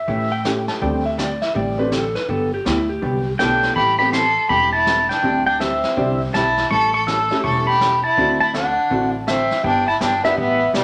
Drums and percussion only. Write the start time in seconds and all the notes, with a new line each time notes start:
0.08 brush sweep, kick
0.45 snare, hi-hat pedal
0.68 snare
0.81 brush sweep, kick
1.19 snare, hi-hat pedal
1.42 snare
1.55 brush sweep, kick
1.92 snare, hi-hat pedal
2.15 snare
2.29 brush sweep, kick
2.66 snare, hi-hat pedal
3.02 brush sweep, kick
3.39 snare, hi-hat pedal
3.63 snare
3.76 brush sweep, kick
4.13 snare, hi-hat pedal
4.50 brush sweep, kick
4.87 snare, hi-hat pedal
5.10 snare
5.24 brush sweep, kick
5.61 snare, hi-hat pedal
5.83 snare
5.97 brush sweep, kick
6.34 snare, hi-hat pedal
6.57 snare
6.71 brush sweep, kick
7.08 snare, hi-hat pedal
7.31 snare
7.44 brush sweep, kick
7.81 snare, hi-hat pedal
8.17 brush sweep, kick
8.54 snare, hi-hat pedal
8.91 brush sweep, kick
9.27 snare, hi-hat pedal
9.51 snare
9.64 brush sweep, kick
10.01 snare, hi-hat pedal
10.24 snare
10.37 brush sweep, kick
10.74 snare, hi-hat pedal